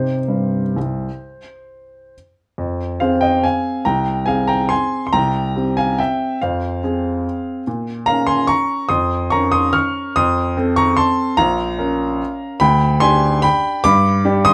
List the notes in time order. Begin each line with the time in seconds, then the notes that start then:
Already playing: C3 D#4 G4 C5
0.28 G2
0.76 C2
2.58 F2
3.00 C4 G#4 C5 F5
3.21 D#5 G5
3.44 F5 G#5
3.85 C2 G5 A#5
4.26 C4 G#4 F5 G#5
4.48 G5 A#5
4.69 G#5 C6
5.07 C6
5.13 C2 G5 A#5
5.56 C4 G4
5.77 F5 G#5
5.99 E5 G5
6.42 F2 C5 F5
6.84 C4 G#4
7.67 A#2
8.06 C#4 A#4 F5 A#5
8.27 G#5 C6
8.47 A#5 C#6
8.89 F2 C6 D#6
9.30 C#4 A#4 A#5 C#6
9.52 C6 D#6
9.73 C#6 F6
10.16 F2 C6 D#6
10.57 C4 A4
10.76 A#5 C#6
10.97 A5 C6
11.37 A#1 F5 A#5
11.78 C#4 A#4
12.60 D2 G5 B5
13.00 D4 G4 G#5 C6
13.42 G5 B5
13.84 G2 B5 D6
14.25 D4 G4
14.45 C6 D#6